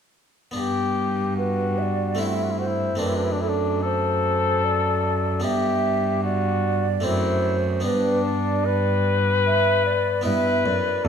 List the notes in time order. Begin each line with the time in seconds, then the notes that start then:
0.51 B3 D4 G4
0.55 G2
1.37 F#4 B4
1.78 D5 E5
2.15 A3 C4 E4
2.19 E4 F#5
2.24 F#4 E5
2.35 E4
2.44 F#4
2.51 E4
2.59 F#4 C5
2.67 E4
2.95 A3 C4 D4
3.00 F#2 B4
3.07 E4
3.16 D4
3.24 E4
3.32 D4
3.41 E4 A4
3.49 D4
3.82 A4 C5
4.64 D5
5.40 B3 D4 G4
5.44 G2 E5
6.23 F#4 D5
7.00 F#2 A3 C4 D4 E4
7.05 F#2 C5
7.80 B3 D4
7.84 G2 D4 B4
8.25 D5
8.66 B4
9.46 E5
9.86 D5
10.21 B3 E4 B4
10.25 G2 E5
10.65 F#2 D5
11.05 E2 A4